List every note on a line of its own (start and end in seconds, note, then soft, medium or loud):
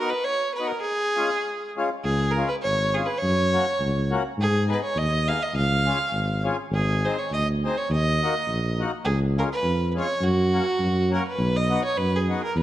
0.00 0.12 B3 medium
0.00 0.12 D#4 medium
0.00 0.12 F#4 medium
0.00 0.11 A#4 medium
0.10 0.26 B4 medium
0.24 0.54 C#5 loud
0.54 0.69 B4 medium
0.60 0.72 B3 medium
0.60 0.71 D#4 medium
0.60 0.72 F#4 medium
0.67 0.80 A#4 medium
0.81 1.70 G#4 loud
1.16 1.29 G#3 medium
1.16 1.29 C#4 medium
1.16 1.30 F4 medium
1.76 1.89 G#3 medium
1.76 1.90 C#4 medium
1.76 1.90 F4 medium
2.04 2.43 C#2 medium
2.04 2.32 G#4 medium
2.31 2.47 A#4 medium
2.37 2.49 G#3 medium
2.37 2.49 C#4 medium
2.37 2.49 F4 medium
2.48 2.55 B4 medium
2.62 3.02 G#1 medium
2.62 2.95 C#5 medium
2.94 3.08 G#3 medium
2.94 3.07 C#4 medium
2.94 3.07 F4 medium
2.94 3.07 G#4 medium
3.05 3.20 B4 medium
3.18 4.08 C#5 loud
3.23 3.60 F#2 medium
3.54 3.66 A#3 medium
3.54 3.66 C#4 medium
3.54 3.66 F#4 medium
3.80 4.17 C#2 medium
4.11 4.23 A#3 medium
4.11 4.23 C#4 medium
4.11 4.23 F#4 medium
4.37 4.75 G#2 loud
4.37 4.68 G#4 loud
4.68 4.81 B3 medium
4.68 4.80 D#4 medium
4.68 4.81 G#4 medium
4.68 4.82 B4 medium
4.84 4.99 C#5 medium
4.95 5.33 D#2 medium
4.95 5.29 D#5 loud
5.27 5.39 B3 medium
5.27 5.40 D#4 soft
5.27 5.40 G#4 medium
5.27 5.44 F5 medium
5.43 5.55 D#5 medium
5.53 5.92 C#2 loud
5.53 6.41 F5 loud
5.86 5.98 C#4 medium
5.86 5.98 F4 medium
5.86 5.98 G#4 medium
6.12 6.51 G#1 medium
6.44 6.57 C#4 medium
6.44 6.57 F4 medium
6.44 6.57 G#4 medium
6.71 7.10 G#1 loud
6.71 7.06 G#4 medium
7.05 7.17 C4 medium
7.05 7.17 D#4 medium
7.05 7.17 G#4 medium
7.05 7.20 C5 medium
7.18 7.32 C#5 medium
7.31 7.69 D2 medium
7.31 7.47 D#5 medium
7.65 7.76 C4 medium
7.65 7.76 D#4 medium
7.65 7.76 G#4 medium
7.65 7.79 C5 medium
7.77 7.91 C#5 medium
7.90 8.27 D#2 loud
7.90 8.76 D#5 loud
8.23 8.34 A#3 medium
8.23 8.34 D#4 medium
8.23 8.34 F#4 medium
8.47 8.85 A#1 medium
8.80 8.91 A#3 medium
8.80 8.91 D#4 medium
8.80 8.92 F#4 medium
9.05 9.43 C#2 loud
9.05 9.19 G#4 medium
9.38 9.49 G#3 medium
9.38 9.49 C#4 medium
9.38 9.49 F4 medium
9.38 9.44 A#4 medium
9.52 9.92 B4 medium
9.63 10.00 F2 medium
9.94 10.06 G#3 medium
9.94 10.07 C#4 medium
9.94 10.07 F4 medium
9.94 10.25 C#5 medium
10.21 10.59 F#2 loud
10.21 11.13 F#4 medium
10.53 10.65 A#3 medium
10.53 10.65 C#4 medium
10.53 10.65 F#4 medium
10.79 11.18 F#2 medium
11.11 11.24 A#3 medium
11.11 11.24 C#4 medium
11.11 11.24 F#4 medium
11.11 11.26 A#4 medium
11.28 11.58 B4 medium
11.38 11.77 B1 medium
11.56 11.83 D#5 medium
11.69 11.83 B3 medium
11.69 11.82 D#4 medium
11.69 11.83 F#4 medium
11.84 11.99 C#5 medium
11.97 12.36 F#2 medium
11.97 12.17 B4 medium
12.16 12.42 G#4 medium
12.29 12.42 B3 soft
12.29 12.42 D#4 soft
12.29 12.42 F#4 medium
12.43 12.56 A#4 medium
12.56 12.63 E2 loud
12.56 12.63 B4 loud